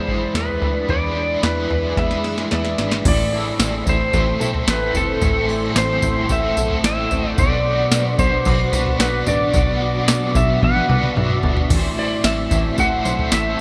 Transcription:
Already playing: E3 G#3 D4 E4 G#4 C5 D5 E5 B5
0.08 F#2 E4, kick
0.35 E2 B4, snare
0.49 floor tom
0.62 D2 D4, floor tom
0.88 E2 E3 G#3 D4 E4 B4 D5, floor tom
1.16 D4
1.40 E2 G#3 D4 E4, snare
1.45 E4 B4
1.70 E2 B4, floor tom
1.95 E2 E3 G#3 E5, kick, snare
2.00 D4 E4
2.04 B4
2.11 snare
2.24 F#2 E4 B4, snare
2.38 snare
2.51 E2 B4 D5 E5, snare
2.65 snare
2.78 G#1 D4, snare
2.91 snare
3.03 A1 A2 E3 A3 A4 C5 E5 C6, kick, floor tom, crash, tambourine
3.08 C4 E4 A4 D5
3.33 E4 E5
3.59 A1 C4, snare, tambourine
3.86 A1 E4 C5, kick, floor tom, tambourine
4.13 A1 A3 C4 E4, kick, floor tom, tambourine
4.18 A4
4.39 B1 E4 A4, tambourine
4.44 A3 C4
4.54 floor tom
4.68 A1 E4 B4, snare, tambourine
4.94 G1 C4 A4, floor tom, tambourine
5.20 A1 A2 E3 A3 F#5, kick, floor tom, tambourine
5.25 C4 E4 A4
5.48 E4 D5
5.75 A1 C4 C5, snare, tambourine
6.02 A1 E4, kick, floor tom, tambourine
6.29 A1 A3 C4 E4 E5, kick, floor tom, tambourine
6.35 A4
6.56 B1 E4 A4, tambourine
6.60 A3 C4
6.70 floor tom
6.84 A1 E4 E5, snare, tambourine
7.11 A1 C4, floor tom, tambourine
7.29 D5
7.36 B1 B2 F#3 F#4 D5 D6, kick, floor tom, tambourine
7.40 B3 D4 F#4
7.44 B4
7.66 F#4
7.92 B1 D4, snare, tambourine
8.18 B1 F#4 C5, kick, floor tom, tambourine
8.45 B1 B3 D4 F#4 D5, kick, floor tom, tambourine
8.50 B4
8.72 C2 F#4 B4, tambourine
8.76 B3 D4
8.86 floor tom
8.99 B1 F#4 B4, snare, tambourine
9.26 A1 D4 D5, floor tom, tambourine
9.52 B1 B2 F#3 E5, kick, floor tom, tambourine
9.56 B3 D4 F#4
9.61 B4
9.81 F#4
10.08 B1 D4, snare, tambourine
10.35 B1 F#4 E5, kick, floor tom, tambourine
10.60 B1 B3 D4, kick, high tom
10.64 F#4 B4 F#5
10.76 high tom
10.88 C2 D4 F#4 B4, mid tom
10.93 B3
11.03 mid tom
11.16 B1 F#4 E5, mid tom
11.30 mid tom
11.43 G1 D4, floor tom
11.57 floor tom
11.68 A1 A2 E3 A3 C5 A5 E6, kick, floor tom, crash, tambourine
11.74 C4 E4 C5
11.97 E4 D5
12.24 A1 C4 A4 E5, snare, tambourine
12.51 A1 E4, kick, floor tom, tambourine
12.77 A1 A3 C4 F#5, kick, floor tom, tambourine
12.81 E4 C5
13.03 B1 C4 E4 C5, tambourine
13.09 A3
13.19 floor tom
13.32 A1 E4 E5, snare, tambourine

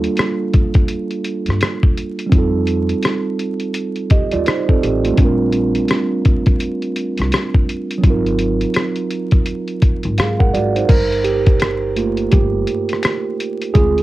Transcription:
Already playing: G3 A#3 D4 F4 A4
0.04 closed hi-hat
0.17 cross-stick, closed hi-hat
0.54 kick, closed hi-hat
0.74 kick, closed hi-hat
0.88 closed hi-hat
1.11 closed hi-hat
1.24 closed hi-hat
1.46 G2, closed hi-hat
1.50 cross-stick
1.61 cross-stick, closed hi-hat
1.83 kick
1.98 closed hi-hat
2.19 closed hi-hat
2.26 G3 C4
2.32 F2 D#4 F4, kick, closed hi-hat
2.38 A4
2.67 closed hi-hat
2.89 closed hi-hat
3.02 cross-stick, closed hi-hat
3.39 closed hi-hat
3.60 closed hi-hat
3.74 closed hi-hat
3.96 closed hi-hat
4.10 G4 D#5, kick, closed hi-hat
4.31 D#2 F4 D5, closed hi-hat
4.46 D#4 C5, cross-stick, closed hi-hat
4.69 C4 A4, kick
4.83 A1 G4, closed hi-hat
5.04 A3 F4, closed hi-hat
5.13 G3 C4
5.17 A#1 D4, kick, closed hi-hat
5.22 F4 A#4
5.52 closed hi-hat
5.75 closed hi-hat
5.88 cross-stick, closed hi-hat
6.25 kick, closed hi-hat
6.46 kick, closed hi-hat
6.60 closed hi-hat
6.82 closed hi-hat
6.96 closed hi-hat
7.18 C2, closed hi-hat
7.22 cross-stick
7.32 cross-stick, closed hi-hat
7.55 kick
7.69 closed hi-hat
7.91 closed hi-hat
7.98 F#3 C4
8.04 G#1 D#4 F4, kick, closed hi-hat
8.10 A#4
8.27 closed hi-hat
8.39 closed hi-hat
8.61 closed hi-hat
8.74 cross-stick, closed hi-hat
8.96 closed hi-hat
9.11 closed hi-hat
9.31 kick, closed hi-hat
9.46 closed hi-hat
9.68 closed hi-hat
9.82 kick, closed hi-hat
10.03 G#1, closed hi-hat
10.18 G#2 G#4 F5, cross-stick, closed hi-hat
10.39 A#4 F#5, kick
10.54 G#1 F#4 D5, closed hi-hat
10.76 D#4 C5, closed hi-hat
10.89 G1 A#4, kick, closed hi-hat, crash
11.12 closed hi-hat
11.24 G4, closed hi-hat
11.46 kick, closed hi-hat
11.59 finger snap, cross-stick, closed hi-hat
11.96 A3 A#3 F4, closed hi-hat
12.17 closed hi-hat
12.31 G1 G4, kick, closed hi-hat
12.67 closed hi-hat
12.89 closed hi-hat
12.93 cross-stick
13.03 finger snap, cross-stick, closed hi-hat
13.40 closed hi-hat
13.61 closed hi-hat
13.74 D2 G#3 C4 F4 G#4, kick, closed hi-hat
13.98 closed hi-hat

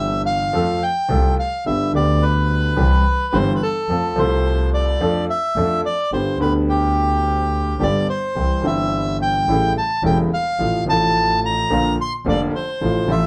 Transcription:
Already playing: G1 G2 E3 G3 C4 G4 E5
0.26 F5
0.53 F2 F3 A3 C4 A4
0.83 G5
1.09 C2 C3 F3 A3 C4 A4
1.39 F5
1.66 G1 G2 D3 G3 B3 G4 E5
1.92 D2 D3 G3 B3 D5
1.96 G4
2.22 B4
2.76 C2 C3 E3 G3 C4 G4
3.32 G1 G2 E3 G3 C4 G4 C5
3.55 B4
3.62 A4
3.89 F2 F3 A3 C4 A4
4.16 C2 C3 F3 A3 C4 C5
4.20 A4
4.74 D5
5.00 F2 F3 A3 D4 A4
5.30 E5
5.56 F2 F3 A3 D4 A4
5.86 D5
6.12 G1 G2 D3 G3 B3 G4 C5
6.40 D2 D3 G3 B3 G4 B4
6.69 G4
7.79 G1 G2 D3 G3 B3 G4 D5
8.09 C5
8.35 C2 C3 E3 G3 C4 G4
8.62 G1 G2 E3 G3 C4 G4
8.66 E5
9.22 G5
9.47 A1 A2 C#3 G3 A3 E4
9.78 A5
10.03 E1 E2 C#3 G3 A3 E4 G5
10.34 F5
10.59 A1 A2 C3 F3 A3 F4
10.86 A1 A2 C3 F3 A3 A5
10.90 F4
11.46 A#5
11.70 A#1 A#2 D3 F3 A#3 F4
12.01 C6
12.26 F1 F2 D3 F3 A#3 F4 D5
12.55 C5
12.81 A1 A2 C3 F3 A3 F4
13.07 A1 A2 C3 F3 A3
13.11 F4 E5

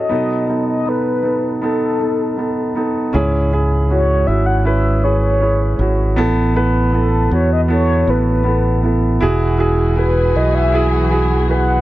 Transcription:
Already playing: C#4 F#4 G#4 A4 D#5
0.09 B2 F#3 B3 D#4 A4
0.47 B3 D#4 A4
0.69 D#5
0.86 B3 D#4 A4 B4
1.23 B3 D#4 A4
1.62 B3 D#4 A4
1.99 B3 D#4 A4
2.37 B3 D#4 A4
2.75 B3 D#4 A4
3.13 C#2 G#2 C#4 E4 G#4
3.52 C#4 E4 G#4
3.89 C#4 E4 F#4 C#5
4.27 G#1 C#4 E4 F#4 E5
4.46 F#5
4.60 F#5
4.64 C#4 E4 B4 E5
5.03 C#4 E4 G#4 C#5
5.23 C#5
5.40 C#4 E4 G#4
5.79 G#1 C#4 E4 F#4
6.16 A1 B3 E4 A4
6.55 B3 E4 B4
6.92 B3 E4 A4
7.30 E2 B3 E4 F#4 C#5
7.53 D#5
7.68 B3 E4 A4 C#5
8.07 A1 B3 E4 A4 B4
8.28 B4
8.44 B3 E4 A4
8.83 B3 E4 A4
9.21 E1 B2 E3 B3 E4 F#4 G#4
9.58 E4 F#4 G#4
9.96 E4 F#4 B4
10.35 B1 E4 F#4 B4 D#5
10.55 E5
10.72 E4 F#4 G#4
11.11 E4 F#4 G#4
11.49 E4 F#4 B4 F#5

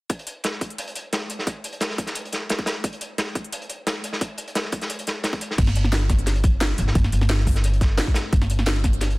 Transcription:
0.10 kick, closed hi-hat
0.19 closed hi-hat
0.27 closed hi-hat
0.44 snare, closed hi-hat
0.61 kick, closed hi-hat
0.70 closed hi-hat
0.78 closed hi-hat
0.87 closed hi-hat
0.96 closed hi-hat
1.13 snare, closed hi-hat
1.30 closed hi-hat
1.39 snare
1.47 kick, closed hi-hat
1.64 closed hi-hat
1.73 closed hi-hat
1.81 snare, closed hi-hat
1.90 snare
1.98 kick, closed hi-hat
2.07 snare, closed hi-hat
2.15 closed hi-hat
2.25 closed hi-hat
2.32 snare, closed hi-hat
2.49 snare, closed hi-hat
2.59 kick, closed hi-hat
2.66 snare, closed hi-hat
2.84 kick, closed hi-hat
2.93 closed hi-hat
3.01 closed hi-hat
3.18 snare, closed hi-hat
3.35 kick, closed hi-hat
3.44 closed hi-hat
3.53 closed hi-hat
3.62 closed hi-hat
3.69 closed hi-hat
3.87 snare, closed hi-hat
4.04 closed hi-hat
4.13 snare
4.21 kick, closed hi-hat
4.38 closed hi-hat
4.48 closed hi-hat
4.55 snare, closed hi-hat
4.64 snare
4.72 kick, closed hi-hat
4.81 snare, closed hi-hat
4.90 closed hi-hat
4.99 closed hi-hat
5.07 snare, closed hi-hat
5.24 snare, closed hi-hat
5.33 kick, closed hi-hat
5.41 closed hi-hat
5.51 snare
5.58 G1, kick, closed hi-hat, crash
5.67 snare, closed hi-hat
5.75 closed hi-hat
5.84 snare
5.92 snare, closed hi-hat
6.09 kick, snare, closed hi-hat
6.19 closed hi-hat
6.27 snare, closed hi-hat
6.35 closed hi-hat
6.44 kick, closed hi-hat
6.61 snare, closed hi-hat
6.78 G1, closed hi-hat
6.87 snare
6.95 G1, kick, closed hi-hat
7.04 snare
7.12 G1, closed hi-hat
7.21 snare, closed hi-hat
7.30 snare, closed hi-hat
7.38 snare
7.47 kick, closed hi-hat, open hi-hat
7.55 snare, closed hi-hat
7.64 closed hi-hat
7.73 closed hi-hat
7.81 kick, snare, closed hi-hat
7.97 snare, closed hi-hat
8.07 kick, closed hi-hat
8.14 snare, closed hi-hat
8.33 G1, kick, closed hi-hat
8.41 snare, closed hi-hat
8.50 closed hi-hat
8.59 snare
8.66 snare, closed hi-hat
8.84 kick, snare, closed hi-hat
8.93 closed hi-hat
9.01 snare, closed hi-hat
9.10 closed hi-hat

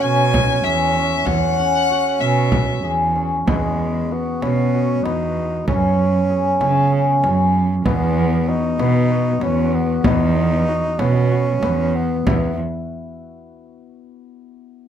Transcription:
Already playing: C#4 F#4 G#4
0.02 B2 C#4 G#5
0.34 frame drum
0.64 E2 G#4 E5
0.96 C#4, frame drum
1.25 E2 C#4 F#5, frame drum
1.58 C#4, frame drum
1.90 F#4, frame drum
2.21 B2 C#4 E5
2.52 frame drum
2.84 E2 G#4
3.16 C#4, frame drum
3.47 E2 G#3 B3, frame drum
4.11 B3 F#4
4.42 B2 B3 C#4, frame drum
4.75 F#4
5.04 E2 B3 D#4, frame drum
5.37 frame drum
5.67 F#2 C#4, frame drum
6.30 G#4
6.61 C#3 C#4, frame drum
6.92 G#4
7.23 F#2 C#4, frame drum
7.55 frame drum
7.86 E2 B3, frame drum
8.48 D#4 F#4
8.80 B2 B3, frame drum
9.11 F#4
9.41 E2 B3 C#4, frame drum
9.73 B3, frame drum
10.04 E2 B3 D#4, frame drum
10.36 frame drum
10.68 F#4
10.99 B2 B3 C#4, frame drum
11.31 F#4
11.63 E2 B3, frame drum
11.96 B3
12.27 E2 B3 E4, frame drum

